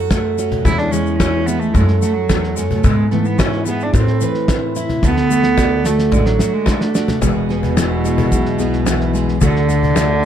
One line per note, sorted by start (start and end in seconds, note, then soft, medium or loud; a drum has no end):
0.00 0.62 F#2 medium
0.00 0.62 F#3 medium
0.00 0.10 A3 medium
0.00 0.71 F#4 medium
0.11 0.63 A3 medium
0.11 0.71 A3 medium
0.11 kick medium
0.11 cajon slap medium
0.11 snare medium
0.11 shaker medium
0.37 0.71 C#4 medium
0.37 0.63 F#4 medium
0.37 snare soft
0.37 cajon slap soft
0.37 shaker medium
0.51 cajon bass medium
0.51 snare soft
0.64 1.71 E2 medium
0.64 1.73 E2 medium
0.64 0.91 E3 medium
0.64 1.81 E3 medium
0.64 1.19 G#3 medium
0.64 1.73 C#4 medium
0.64 0.80 E4 loud
0.64 kick medium
0.64 cajon bass medium
0.64 snare soft
0.64 shaker medium
0.78 0.93 D4 medium
0.78 snare soft
0.92 1.71 E3 medium
0.92 1.47 G#3 medium
0.92 1.18 C#4 medium
0.92 snare soft
0.92 shaker medium
1.06 shaker soft
1.19 1.72 G#3 medium
1.19 1.48 C#4 medium
1.19 1.81 C#4 medium
1.19 kick medium
1.19 snare medium
1.19 cajon slap medium
1.19 shaker medium
1.46 1.75 G#3 medium
1.46 1.61 B3 medium
1.46 1.75 E4 medium
1.46 snare soft
1.46 cajon slap soft
1.46 shaker medium
1.59 1.75 A3 medium
1.59 shaker soft
1.73 2.29 F#2 medium
1.73 2.01 F#2 medium
1.73 2.00 G#3 medium
1.73 2.28 A3 medium
1.73 kick medium
1.73 cajon bass medium
1.73 snare soft
1.73 cajon slap soft
1.73 shaker medium
1.88 cajon slap soft
1.88 snare soft
2.01 2.81 F#3 medium
2.01 2.15 A3 medium
2.01 2.90 F#4 medium
2.01 snare soft
2.01 cajon slap soft
2.01 shaker medium
2.14 2.57 F#3 medium
2.29 2.57 E2 medium
2.29 2.83 A3 medium
2.29 kick medium
2.29 cajon slap medium
2.29 snare medium
2.29 shaker medium
2.44 snare soft
2.55 2.84 F#2 medium
2.55 2.69 G#3 medium
2.55 2.90 C#4 medium
2.55 cajon slap soft
2.55 snare soft
2.55 shaker medium
2.70 2.86 A3 medium
2.70 cajon bass medium
2.70 snare soft
2.84 3.90 G#2 medium
2.84 3.91 G#2 medium
2.84 3.11 G#3 medium
2.84 3.10 B3 medium
2.84 kick medium
2.84 cajon bass loud
2.84 snare soft
2.84 shaker medium
3.11 3.91 E3 medium
3.11 3.28 A3 medium
3.11 3.65 B3 medium
3.11 snare soft
3.25 3.40 B3 medium
3.25 shaker soft
3.39 3.91 G#3 medium
3.39 3.66 C#4 medium
3.39 3.99 E4 medium
3.39 kick medium
3.39 snare medium
3.39 cajon slap loud
3.39 shaker medium
3.52 snare soft
3.66 3.99 B3 medium
3.66 3.84 B3 medium
3.66 3.91 G#4 medium
3.66 snare soft
3.66 cajon slap soft
3.66 shaker medium
3.80 3.95 D4 medium
3.80 shaker soft
3.93 4.20 A2 loud
3.93 5.03 A2 medium
3.93 5.03 A3 medium
3.93 4.46 C4 medium
3.93 kick medium
3.93 cajon bass loud
3.93 snare soft
3.93 cajon slap soft
3.93 shaker medium
4.07 snare soft
4.07 cajon slap soft
4.21 5.00 E3 medium
4.21 5.09 B4 medium
4.21 snare soft
4.21 cajon slap soft
4.21 shaker medium
4.34 snare soft
4.48 5.01 A3 medium
4.48 5.09 C4 medium
4.48 kick medium
4.48 snare medium
4.48 cajon slap medium
4.48 shaker medium
4.75 5.03 E4 medium
4.75 5.09 E4 medium
4.75 snare soft
4.75 cajon slap soft
4.75 shaker medium
4.89 cajon bass medium
4.89 snare soft
5.02 6.08 D2 medium
5.02 7.22 D3 medium
5.02 5.30 A3 medium
5.02 5.87 B3 loud
5.02 kick medium
5.02 cajon bass medium
5.02 snare soft
5.02 cajon slap soft
5.02 shaker medium
5.17 snare soft
5.31 6.38 A3 medium
5.31 5.84 A3 medium
5.31 shaker medium
5.43 snare medium
5.43 shaker soft
5.58 6.11 D4 medium
5.58 6.12 D4 medium
5.58 kick medium
5.58 cajon slap medium
5.58 snare medium
5.58 shaker medium
5.85 6.66 A3 medium
5.85 6.16 A3 medium
5.85 6.93 F#4 medium
5.85 snare medium
5.85 shaker medium
5.99 snare medium
5.99 shaker soft
6.12 6.38 A1 medium
6.12 6.28 G#3 medium
6.12 6.93 D4 medium
6.12 6.67 D4 medium
6.12 cajon bass medium
6.12 kick medium
6.12 cajon slap soft
6.12 shaker medium
6.26 6.56 F#3 medium
6.26 cajon slap soft
6.26 snare medium
6.39 7.19 A3 medium
6.39 7.27 F#4 medium
6.39 cajon slap soft
6.39 snare medium
6.39 shaker medium
6.54 6.83 G#3 medium
6.66 7.28 A3 medium
6.66 7.19 D4 medium
6.66 kick medium
6.66 cajon slap medium
6.66 snare medium
6.66 shaker medium
6.81 7.21 A3 medium
6.81 snare medium
6.95 7.22 D4 medium
6.95 7.19 F#4 medium
6.95 snare medium
6.95 shaker medium
7.08 cajon bass medium
7.08 snare medium
7.08 shaker soft
7.21 8.28 E1 medium
7.21 9.41 E2 medium
7.21 9.37 B2 medium
7.21 7.49 B3 medium
7.21 8.59 G#4 medium
7.21 cajon bass medium
7.21 kick medium
7.21 snare soft
7.21 shaker medium
7.49 8.04 B3 medium
7.49 9.38 G#4 medium
7.49 snare soft
7.63 cajon bass medium
7.63 snare soft
7.76 8.84 E3 medium
7.76 8.58 B3 medium
7.76 8.31 E4 medium
7.76 cajon slap medium
7.76 snare medium
7.76 shaker loud
8.04 9.12 G#3 medium
8.04 9.41 B3 medium
8.04 snare soft
8.04 shaker medium
8.18 cajon bass medium
8.18 snare soft
8.31 9.38 B1 medium
8.31 8.86 B2 medium
8.31 8.86 E4 medium
8.31 kick medium
8.31 snare soft
8.31 shaker loud
8.46 snare soft
8.59 9.41 B3 medium
8.59 9.13 G#4 medium
8.59 snare soft
8.59 shaker medium
8.73 snare soft
8.85 9.38 E3 medium
8.85 9.47 E4 medium
8.85 cajon slap medium
8.85 snare medium
8.85 shaker medium
9.01 snare soft
9.13 9.38 G#3 medium
9.13 9.42 G#4 medium
9.13 snare soft
9.13 shaker medium
9.29 snare soft
9.41 10.25 D2 medium
9.41 10.25 D3 medium
9.41 10.25 D3 loud
9.41 9.95 A3 medium
9.41 9.69 A3 medium
9.41 10.22 D4 medium
9.41 10.25 F#4 medium
9.41 9.68 F#4 medium
9.41 cajon bass medium
9.41 kick medium
9.41 snare soft
9.41 shaker medium
9.56 snare soft
9.69 10.24 A3 medium
9.69 9.96 A4 medium
9.69 snare soft
9.69 shaker medium
9.83 cajon bass medium
9.83 snare soft
9.95 10.25 A3 medium
9.95 10.25 D4 medium
9.95 10.25 F#4 medium
9.95 cajon slap medium
9.95 snare medium
9.95 shaker loud